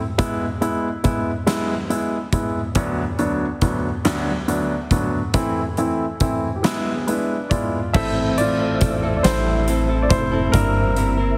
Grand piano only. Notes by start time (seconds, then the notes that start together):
0.18 G#3 B3 E4
0.61 G#3 B3 E4
1.04 G#3 B3 E4
1.46 G#3 B3 E4
1.90 G#3 B3 E4
2.33 G#3 B3 E4
2.75 D2 F#3 B3 D4
3.19 D2 F#3 B3 D4
3.62 D2 F#3 B3 D4
4.05 D2 F#3 B3 D4
4.48 D2 F#3 B3 D4
4.91 D2 F#3 B3 D4
5.34 E3 A3 C4 E4
5.77 E3 A3 C4 E4
6.20 E3 A3 C4 E4
6.56 G4
6.63 G#3 B3 E4 G#4
7.07 G#3 B3 D4 E4 B4
7.50 G#3 B3 E4 F4 D5
7.93 A3 C4 E4 A4 E5
8.38 F4 D5
9.17 D5
9.23 E4 C5
10.02 D5
10.09 E4 C5
10.52 A#3 D4 E4 A#4